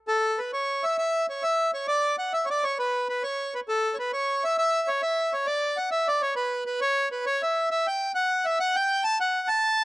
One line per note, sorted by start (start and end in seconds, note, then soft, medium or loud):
0.08 0.39 A4 loud
0.39 0.51 B4 medium
0.53 0.84 C#5 loud
0.84 0.97 E5 loud
0.98 1.26 E5 loud
1.29 1.43 C#5 medium
1.43 1.71 E5 loud
1.74 1.87 C#5 medium
1.88 2.16 D5 loud
2.18 2.33 F#5 medium
2.33 2.45 E5 loud
2.45 2.49 C#5 medium
2.50 2.64 D5 loud
2.64 2.78 C#5 loud
2.79 3.08 B4 loud
3.09 3.23 B4 medium
3.23 3.54 C#5 loud
3.55 3.60 B4 medium
3.69 3.96 A4 loud
3.94 3.98 C#5 medium
3.99 4.11 B4 medium
4.13 4.44 C#5 loud
4.44 4.57 E5 loud
4.58 4.89 E5 loud
4.88 5.02 C#5 loud
5.02 5.33 E5 loud
5.33 5.47 C#5 medium
5.46 5.77 D5 loud
5.77 5.90 F#5 medium
5.91 6.08 E5 loud
6.08 6.22 D5 loud
6.22 6.34 C#5 loud
6.36 6.64 B4 loud
6.66 6.80 B4 loud
6.81 7.09 C#5 loud
7.12 7.25 B4 medium
7.26 7.42 C#5 loud
7.43 7.69 E5 medium
7.71 7.87 E5 loud
7.87 8.12 G5 loud
8.15 8.45 F#5 loud
8.45 8.59 E5 loud
8.60 8.76 F#5 loud
8.76 9.04 G5 loud
9.04 9.18 A5 loud
9.20 9.48 F#5 loud
9.48 9.84 A5 loud